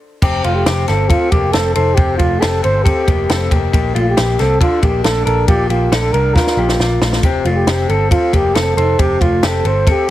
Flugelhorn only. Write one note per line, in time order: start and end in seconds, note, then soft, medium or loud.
0.44 0.57 F4 medium
0.56 0.88 G4 medium
0.88 1.10 A4 medium
1.09 1.32 F4 medium
1.31 1.54 G4 medium
1.52 1.74 A4 loud
1.75 1.96 A4 medium
1.95 2.17 G4 loud
2.17 2.41 F4 medium
2.40 2.62 A4 loud
2.64 2.84 C5 loud
2.83 3.50 G4 medium
3.98 4.06 F4 medium
4.09 4.42 G4 medium
4.40 4.61 A4 medium
4.61 4.81 F4 loud
4.82 5.03 G4 medium
5.04 5.25 A4 loud
5.26 5.46 A4 loud
5.48 5.68 G4 loud
5.69 5.94 F4 medium
5.92 6.14 A4 loud
6.12 6.36 A#4 loud
6.35 7.01 F4 medium
7.44 7.50 F4 medium
7.55 7.90 G4 medium
7.88 8.10 A4 medium
8.11 8.35 F4 loud
8.34 8.57 G4 medium
8.55 8.75 A4 loud
8.76 9.01 A4 medium
9.00 9.23 G4 loud
9.21 9.46 F4 medium
9.45 9.68 A4 loud
9.67 9.88 C5 loud
9.90 10.10 G4 loud